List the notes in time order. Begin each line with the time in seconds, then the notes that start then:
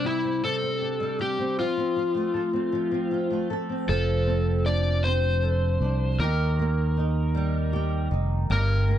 Already playing: C3 G3 C4 D4
0.04 E4 G4
0.24 C4
0.44 C3 A4
0.63 C4
0.82 D4
1.00 G3
1.19 G4
1.39 C4
1.59 F3 F4
1.77 C4
1.96 F4
2.14 A3
2.34 A4
2.53 C4
2.72 F3
2.91 C4
3.11 F4
3.30 A3
3.50 A4
3.69 C4
3.88 F1 F3 A4
4.27 C4
4.65 D4 D5
5.04 C4 C5
5.42 A4
5.80 C2 D4
6.19 D#2 D#3 G4 A#4
6.59 A#3
6.97 D#4
7.35 G3
7.73 G4
8.11 F1 D#4
8.50 G1 G2 G4 A#4
8.88 A#3